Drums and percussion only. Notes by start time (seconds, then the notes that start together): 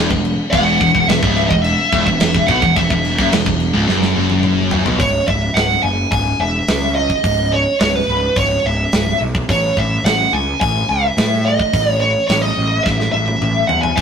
0.11 kick
0.25 crash
0.53 kick, crash
0.81 kick, crash
0.95 kick
1.09 snare, crash
1.23 kick
1.37 crash
1.51 kick
1.64 crash
1.92 kick, crash
2.07 kick
2.20 snare, crash
2.35 kick
2.48 kick, crash
2.62 kick
2.76 kick, crash
2.90 kick
3.05 crash
3.19 kick, snare
3.32 snare, crash
3.46 kick
3.60 crash
3.89 snare
4.02 snare
4.30 high tom
4.43 mid tom
4.71 floor tom
4.86 floor tom
5.00 kick, open hi-hat
5.28 kick
5.56 snare, open hi-hat
6.12 kick, open hi-hat
6.68 snare, open hi-hat
7.10 kick
7.24 kick, open hi-hat
7.80 snare, open hi-hat
8.36 kick, open hi-hat
8.92 snare, open hi-hat
9.35 kick
9.49 kick, open hi-hat
9.77 kick
10.05 snare, open hi-hat
10.61 kick, open hi-hat
11.18 snare, open hi-hat
11.60 kick
11.73 kick, open hi-hat
12.29 snare, open hi-hat
12.86 kick, snare
13.00 snare
13.28 high tom
13.42 mid tom
13.69 floor tom
13.83 floor tom
13.97 kick, open hi-hat